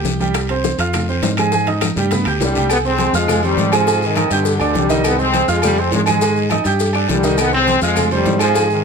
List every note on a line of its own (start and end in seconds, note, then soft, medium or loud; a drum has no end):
0.00 0.73 C2 medium
0.00 0.15 G4 medium
0.00 0.15 G5 medium
0.00 0.15 G6 medium
0.05 high bongo soft
0.05 low bongo medium
0.05 high conga medium
0.05 short guiro medium
0.05 maracas medium
0.19 0.44 G3 medium
0.19 0.45 G4 medium
0.19 0.45 G5 medium
0.19 high conga medium
0.19 short guiro medium
0.19 maracas soft
0.34 high bongo medium
0.34 high conga soft
0.34 high timbale medium
0.34 long guiro medium
0.34 claves medium
0.34 maracas medium
0.49 0.74 C4 medium
0.49 0.74 C5 medium
0.49 0.74 C6 medium
0.49 high bongo soft
0.49 high conga soft
0.49 high timbale medium
0.49 maracas soft
0.64 high bongo medium
0.64 high conga medium
0.64 short guiro medium
0.64 maracas medium
0.78 1.19 F2 medium
0.78 1.03 F4 medium
0.78 1.04 F5 medium
0.78 1.04 F6 medium
0.78 high bongo soft
0.78 high conga soft
0.78 high timbale medium
0.78 short guiro medium
0.78 maracas soft
0.93 high bongo medium
0.93 high conga soft
0.93 low conga medium
0.93 high timbale medium
0.93 long guiro medium
0.93 claves medium
0.93 maracas medium
1.08 1.33 C4 medium
1.08 1.33 C5 medium
1.08 1.33 C6 medium
1.08 high bongo soft
1.08 maracas soft
1.22 1.91 G#2 medium
1.22 high bongo soft
1.22 low bongo medium
1.22 high conga medium
1.22 high timbale medium
1.22 low timbale medium
1.22 short guiro medium
1.22 maracas medium
1.37 1.50 G#3 medium
1.37 1.51 G#4 medium
1.37 1.51 G#5 medium
1.37 high conga medium
1.37 high timbale medium
1.37 short guiro medium
1.37 claves medium
1.37 maracas soft
1.52 1.65 G#3 medium
1.52 1.65 G#4 medium
1.52 1.65 G#5 medium
1.52 high bongo medium
1.52 high conga medium
1.52 maracas medium
1.67 1.91 D#4 medium
1.67 1.91 D#5 medium
1.67 1.92 D#6 medium
1.67 high bongo soft
1.67 high conga medium
1.67 high timbale medium
1.67 maracas soft
1.81 high bongo medium
1.81 high conga medium
1.81 high timbale loud
1.81 short guiro medium
1.81 claves medium
1.81 maracas medium
1.96 2.24 G2 medium
1.96 2.09 G3 medium
1.96 2.09 G4 medium
1.96 2.09 G5 medium
1.96 high bongo soft
1.96 low conga medium
1.96 short guiro medium
1.96 maracas soft
2.11 2.23 B3 medium
2.11 2.24 B4 medium
2.11 2.24 B5 medium
2.11 high bongo medium
2.11 low conga medium
2.11 high timbale medium
2.11 long guiro medium
2.11 maracas medium
2.25 2.39 D2 medium
2.25 2.50 G4 medium
2.25 2.51 G5 medium
2.25 2.51 G6 medium
2.25 high bongo soft
2.25 high timbale medium
2.25 claves medium
2.25 maracas soft
2.40 3.08 C2 medium
2.40 2.69 D3 medium
2.40 2.69 G3 loud
2.40 high bongo soft
2.40 low bongo medium
2.40 low conga medium
2.40 low timbale medium
2.40 short guiro medium
2.40 maracas medium
2.55 2.68 G3 medium
2.55 2.68 G4 medium
2.55 2.68 G5 medium
2.55 low conga medium
2.55 short guiro medium
2.55 maracas soft
2.69 2.78 G3 medium
2.69 2.78 B3 loud
2.69 cowbell loud
2.69 low agogo loud
2.69 long guiro medium
2.69 claves medium
2.69 maracas medium
2.84 3.13 G#3 medium
2.84 3.09 C4 medium
2.84 3.13 C4 loud
2.84 3.09 C5 medium
2.84 3.09 C6 medium
2.84 high conga soft
2.84 maracas soft
2.98 cowbell medium
2.98 high conga medium
2.98 low agogo medium
2.98 short guiro medium
2.98 maracas soft
3.13 3.54 F2 medium
3.13 3.44 F3 medium
3.13 3.44 G#3 loud
3.13 3.38 F4 medium
3.13 3.38 F5 medium
3.13 3.39 F6 medium
3.13 high conga soft
3.13 short guiro medium
3.13 maracas medium
3.28 cowbell loud
3.28 high conga soft
3.28 low conga medium
3.28 low agogo loud
3.28 long guiro medium
3.28 claves medium
3.28 maracas medium
3.43 3.73 D#3 medium
3.43 3.73 G3 loud
3.43 3.68 C4 medium
3.43 3.68 C5 medium
3.43 3.68 C6 medium
3.43 high conga soft
3.43 low agogo medium
3.43 maracas soft
3.57 4.25 G#2 medium
3.57 cowbell medium
3.57 high conga medium
3.57 low agogo medium
3.57 short guiro medium
3.57 maracas soft
3.72 4.03 C3 medium
3.72 4.03 F3 loud
3.72 3.85 G#3 loud
3.72 3.85 G#4 medium
3.72 3.85 G#5 medium
3.72 cowbell medium
3.72 high conga medium
3.72 low agogo loud
3.72 short guiro medium
3.72 claves medium
3.72 maracas medium
3.86 4.11 G#3 medium
3.86 4.11 G#4 medium
3.86 4.12 G#5 medium
3.86 cowbell loud
3.86 low agogo medium
3.86 long guiro medium
3.86 maracas medium
4.02 4.32 C3 medium
4.02 4.33 D#3 loud
4.02 high conga soft
4.02 maracas soft
4.16 4.28 D#4 medium
4.16 4.28 D#5 medium
4.16 4.28 D#6 medium
4.16 cowbell medium
4.16 high conga loud
4.16 low agogo loud
4.16 short guiro medium
4.16 claves medium
4.16 maracas soft
4.30 4.58 G2 loud
4.30 4.72 B2 medium
4.30 4.73 D3 medium
4.30 4.55 G4 medium
4.30 4.55 G5 medium
4.30 4.56 G6 medium
4.30 high conga soft
4.30 low agogo medium
4.30 short guiro medium
4.30 maracas medium
4.45 cowbell loud
4.45 high conga soft
4.45 maracas medium
4.59 4.74 D2 medium
4.59 4.85 D4 medium
4.59 4.85 D5 medium
4.59 4.85 D6 medium
4.59 high conga soft
4.59 low agogo loud
4.59 claves medium
4.59 maracas soft
4.74 5.43 C2 medium
4.74 5.03 D3 medium
4.74 5.03 G3 loud
4.74 cowbell medium
4.74 high conga medium
4.74 low timbale medium
4.74 low agogo medium
4.74 short guiro medium
4.74 maracas soft
4.89 5.13 D#3 medium
4.89 5.13 D#4 medium
4.89 5.14 D#5 loud
4.89 cowbell medium
4.89 high conga medium
4.89 short guiro medium
4.89 maracas medium
5.04 5.19 G3 medium
5.04 5.20 B3 loud
5.04 cowbell loud
5.04 high conga soft
5.04 low agogo loud
5.04 long guiro medium
5.04 claves medium
5.04 maracas medium
5.19 5.49 G#3 medium
5.19 5.43 C4 medium
5.19 5.49 C4 loud
5.19 5.43 C5 medium
5.19 5.43 C6 medium
5.19 high conga soft
5.19 maracas soft
5.33 cowbell medium
5.33 high conga medium
5.33 low agogo loud
5.33 short guiro medium
5.33 maracas soft
5.48 5.89 F2 loud
5.48 5.63 F3 medium
5.48 5.64 G#3 medium
5.48 5.72 F4 medium
5.48 5.72 F5 medium
5.48 5.72 F6 medium
5.48 short guiro medium
5.48 maracas medium
5.62 5.77 C3 medium
5.62 5.77 G3 loud
5.62 cowbell loud
5.62 high conga soft
5.62 low conga medium
5.62 low agogo loud
5.62 long guiro medium
5.62 claves medium
5.62 maracas medium
5.76 5.93 G#3 medium
5.76 6.01 C4 medium
5.76 5.93 C4 loud
5.76 6.02 C5 medium
5.76 6.02 C6 medium
5.76 high conga soft
5.76 low agogo medium
5.91 6.59 G#2 medium
5.91 6.00 F3 medium
5.91 6.00 G#3 loud
5.91 cowbell medium
5.91 high conga medium
5.91 low timbale medium
5.91 low agogo medium
5.91 short guiro medium
5.91 maracas soft
6.06 6.49 D#3 medium
6.06 6.19 G#3 loud
6.06 6.49 G#3 medium
6.06 6.19 G#4 medium
6.06 6.19 G#5 loud
6.06 cowbell medium
6.06 high conga medium
6.06 low agogo loud
6.06 short guiro medium
6.06 claves medium
6.06 maracas medium
6.21 6.45 G#3 medium
6.21 6.46 G#4 medium
6.21 6.46 G#5 medium
6.21 cowbell loud
6.21 low agogo medium
6.21 long guiro medium
6.21 maracas medium
6.36 high conga soft
6.36 maracas soft
6.50 6.63 D#4 medium
6.50 6.63 D#5 medium
6.50 6.63 D#6 medium
6.50 cowbell medium
6.50 high conga loud
6.50 low agogo loud
6.50 short guiro medium
6.50 claves medium
6.50 maracas soft
6.64 7.06 G2 medium
6.64 6.90 G4 medium
6.64 6.90 G5 medium
6.64 6.90 G6 medium
6.64 low agogo medium
6.64 short guiro medium
6.64 maracas medium
6.80 cowbell loud
6.80 high conga soft
6.80 long guiro medium
6.80 maracas medium
6.93 7.19 D4 medium
6.93 7.19 D5 medium
6.93 7.19 D6 medium
6.93 high conga soft
6.93 low agogo loud
6.93 claves medium
6.93 maracas soft
7.08 7.77 C2 medium
7.08 7.37 D3 medium
7.08 7.37 G3 medium
7.08 cowbell medium
7.08 high conga medium
7.08 low timbale medium
7.08 low agogo medium
7.08 short guiro medium
7.08 maracas soft
7.23 7.48 D#3 medium
7.23 7.48 D#4 medium
7.23 7.48 D#5 medium
7.23 cowbell medium
7.23 short guiro medium
7.23 maracas medium
7.38 7.54 G3 medium
7.38 7.54 B3 loud
7.38 cowbell loud
7.38 low agogo loud
7.38 long guiro medium
7.38 claves medium
7.38 maracas medium
7.52 7.81 G#3 medium
7.52 7.77 C4 medium
7.52 7.81 C4 loud
7.52 7.77 C5 medium
7.52 7.77 C6 medium
7.52 high conga soft
7.67 cowbell medium
7.67 high conga loud
7.67 low agogo medium
7.67 short guiro medium
7.67 maracas soft
7.81 8.23 F2 loud
7.81 8.10 F3 medium
7.81 8.10 G#3 loud
7.81 8.06 F4 medium
7.81 8.06 F5 medium
7.81 8.07 F6 medium
7.81 short guiro medium
7.81 maracas medium
7.96 cowbell loud
7.96 high conga soft
7.96 low conga medium
7.96 low agogo loud
7.96 long guiro medium
7.96 claves medium
7.96 maracas medium
8.11 8.39 D#3 medium
8.11 8.39 G3 loud
8.11 8.35 C4 medium
8.11 8.36 C5 medium
8.11 8.36 C6 medium
8.11 high conga soft
8.11 low conga medium
8.11 low agogo medium
8.11 maracas soft
8.25 8.84 G#2 loud
8.25 cowbell medium
8.25 high conga medium
8.25 low timbale medium
8.25 low agogo medium
8.25 short guiro medium
8.25 maracas soft
8.39 8.68 C3 medium
8.39 8.68 F3 loud
8.39 8.52 G#3 medium
8.39 8.52 G#4 medium
8.39 8.53 G#5 medium
8.39 cowbell medium
8.39 low agogo loud
8.39 short guiro medium
8.39 claves medium
8.39 maracas medium
8.54 8.79 G#3 medium
8.54 8.79 G#4 medium
8.54 8.79 G#5 loud
8.54 cowbell loud
8.54 high conga soft
8.54 low agogo medium
8.54 long guiro medium
8.54 maracas medium
8.69 8.84 C3 medium
8.69 8.84 D#3 medium
8.69 high conga soft
8.69 maracas soft